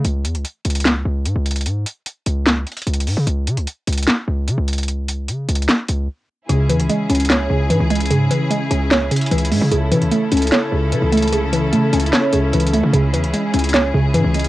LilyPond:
<<
  \new Staff \with { instrumentName = "String section" } { \time 4/4 \key cis \minor \tempo 4 = 149 << { r1 | r1 | r1 | r1 |
gis'1~ | gis'1 | a'1~ | a'1 |
gis'1 | } \\ { r1 | r1 | r1 | r1 |
<cis cis' e'>1~ | <cis cis' e'>1~ | <cis cis' e'>1~ | <cis cis' e'>1~ |
<cis cis' e'>1 | } >> }
  \new Staff \with { instrumentName = "Synth pluck" } { \clef bass \time 4/4 \key cis \minor r1 | r1 | r1 | r1 |
cis8 e8 gis8 cis'8 cis''8 cis8 e8 gis8 | cis8 e8 gis8 cis'8 cis''8 cis8 e8 gis8 | cis8 e8 a8 cis'8 cis''8 cis8 e8 a8 | cis8 e8 a8 cis'8 cis''8 cis8 e8 a8 |
cis8 e8 gis8 cis'8 cis''8 cis8 e8 gis8 | }
  \new Staff \with { instrumentName = "808-style bass" } { \clef bass \time 4/4 \key cis \minor cis,8 e,16 cis,16 r8 cis,4 cis,8 gis,16 cis,8. | gis,8 r4 cis,4 r8 cis,8 gis,16 cis16 | cis,8 cis16 cis,16 r8 cis,8 r8 cis,8 cis16 cis,8.~ | cis,4 cis8 cis,8 r8 cis,8 r4 |
cis,8 e,16 cis,16 r8 cis,4 cis,8 gis,16 cis,8. | gis,8 r4 cis,4 r8 cis,8 gis,16 cis16 | cis,8 cis16 cis,16 r8 cis,8 r8 cis,8 cis16 cis,8.~ | cis,4 cis8 cis,8 r8 cis,8 cis,8. cis16 |
cis,8 e,16 cis,16 r8 cis,4 cis,8 gis,16 cis,8. | }
  \new DrumStaff \with { instrumentName = "Drums" } \drummode { \time 4/4 hh8 hh16 hh16 hh8 <hh hho>32 hh32 hh32 hh32 <hc hh sn>4 hh8 hh32 hh32 hh32 hh32 | hh8 hh8 hh8 hh8 <hc hh sn>8 hh32 hh32 hh32 hh32 \tuplet 3/2 { hh16 hh16 hh16 hho16 r16 r16 } | hh8 hh16 hh16 hh8 <hh hho>32 hh32 hh32 hh32 <hc hh sn>4 hh8 hh32 hh32 hh32 hh32 | hh8 hh8 \tuplet 3/2 { hh16 r16 r16 hh16 hh16 hh16 } <hc hh sn>8 hh8 r4 |
hh8 hh16 hh16 hh8 <hh hho>32 hh32 hh32 hh32 <hc hh sn>4 hh8 hh32 hh32 hh32 hh32 | hh8 hh8 hh8 hh8 <hc hh sn>8 hh32 hh32 hh32 hh32 \tuplet 3/2 { hh16 hh16 hh16 hho16 r16 r16 } | hh8 hh16 hh16 hh8 <hh hho>32 hh32 hh32 hh32 <hc hh sn>4 hh8 hh32 hh32 hh32 hh32 | hh8 hh8 \tuplet 3/2 { hh16 r16 r16 hh16 hh16 hh16 } <hc hh sn>8 hh8 \tuplet 3/2 { hh16 hh16 hh16 hh16 r16 r16 } |
hh8 hh16 hh16 hh8 <hh hho>32 hh32 hh32 hh32 <hc sn>4 hh8 hh32 hh32 hh16 | }
>>